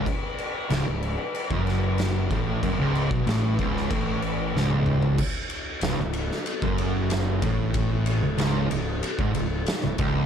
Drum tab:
CC |x-x-x-x-x-x-x-x-|x-x-x-x-x-x-----|x---------------|----------------|
RD |----------------|----------------|--x-x-x-x-x-x-x-|x-x-x-x-x-x-x-x-|
SD |----o-----o-o---|----o--o----o---|----o--o----o---|----o-------o---|
T1 |----------------|-------------o--|----------------|----------------|
T2 |----------------|--------------o-|----------------|----------------|
FT |----------------|---------------o|----------------|----------------|
BD |o--------o----o-|o--o--o-o-------|o--------o----o-|o--------o----o-|